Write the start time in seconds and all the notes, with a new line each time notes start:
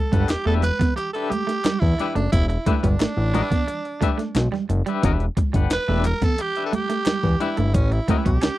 Already playing: A4
0.12 G1 G3 D4 G4 B4 F#5, kick, closed hi-hat, high conga
0.29 E1 G4, muted clean electric guitar stroke, snare, clap, closed hi-hat, muted conga
0.45 E1 A3 D4 G4 A4 B4 E5
0.63 B4, muted clean electric guitar stroke, clap, closed hi-hat, high conga
0.79 B3, muted clean electric guitar stroke, kick, snare, closed hi-hat, low conga
0.96 G4, muted clean electric guitar stroke, closed hi-hat
1.13 D4 G4 A4 B4 E5, closed hi-hat
1.30 A3 G4, muted clean electric guitar stroke, closed hi-hat, high conga
1.47 A3, muted clean electric guitar stroke, snare, closed hi-hat
1.64 G3, muted clean electric guitar stroke, snare, clap, closed hi-hat, muted conga, high conga
1.80 E2 E4, muted clean electric guitar stroke, kick, snare, low conga
1.98 D4 G4 B4 E5, muted clean electric guitar stroke, closed hi-hat, muted conga, high conga
2.15 F#1 A3 D4, muted clean electric guitar stroke, closed hi-hat
2.32 E1 E4, kick, closed hi-hat, muted conga
2.48 E4, muted clean electric guitar stroke, closed hi-hat
2.66 A3 D4 G4 B4 E5, kick, closed hi-hat, muted conga, high conga
2.83 G1 G3 D4, kick, closed hi-hat, high conga
3.00 A1 A3, muted clean electric guitar stroke, snare, clap, closed hi-hat
3.17 A1, muted clean electric guitar stroke
3.34 D4 G4 B4 E5, muted clean electric guitar stroke, closed hi-hat, high conga
3.51 B3, muted clean electric guitar stroke, kick, snare, closed hi-hat, low conga
3.67 muted clean electric guitar stroke, closed hi-hat, muted conga
3.85 muted clean electric guitar stroke, closed hi-hat
4.01 A3 D4 G4 B4 E5, kick, closed hi-hat, high conga
4.18 A3, muted clean electric guitar stroke, snare, closed hi-hat
4.35 B1, muted clean electric guitar stroke, snare, clap, closed hi-hat, muted conga, high conga
4.52 G3, muted clean electric guitar stroke, snare, low conga
4.69 F#1, muted clean electric guitar stroke, closed hi-hat, high conga
4.86 G3 D4 G4 B4 E5, closed hi-hat
5.02 E1 E3 D4 G4 B4 E5, kick, closed hi-hat, muted conga
5.20 closed hi-hat
5.37 muted clean electric guitar stroke, kick, closed hi-hat, muted conga, high conga
5.53 G1 G3 D4 G4 B4 F#5, kick, closed hi-hat, high conga
5.70 E1 B4, muted clean electric guitar stroke, snare, clap, closed hi-hat, muted conga
5.88 E1 A3 D4 G4 B4 E5
6.04 A#4, muted clean electric guitar stroke, clap, closed hi-hat, high conga
6.22 B3 A4, muted clean electric guitar stroke, kick, snare, closed hi-hat, low conga
6.38 G4, muted clean electric guitar stroke, closed hi-hat
6.56 D4 G4 B4 E5, closed hi-hat
6.66 A4
6.72 A3 G4, muted clean electric guitar stroke, closed hi-hat, high conga
6.89 A3, muted clean electric guitar stroke, snare, closed hi-hat
7.05 G3, muted clean electric guitar stroke, snare, clap, closed hi-hat, muted conga, high conga
7.23 E2, muted clean electric guitar stroke, kick, snare, low conga
7.40 D4 E4 G4 B4 E5, muted clean electric guitar stroke, closed hi-hat, muted conga, high conga
7.57 G1 A3, muted clean electric guitar stroke, closed hi-hat
7.74 A1 C#4, kick, closed hi-hat, muted conga
7.92 E4, muted clean electric guitar stroke, closed hi-hat
8.08 A3 C#4 G4 B4 E5, kick, closed hi-hat, muted conga, high conga
8.25 B1 B3 G4, kick, closed hi-hat, high conga
8.42 C#2 C#4, muted clean electric guitar stroke, snare, clap, closed hi-hat, muted conga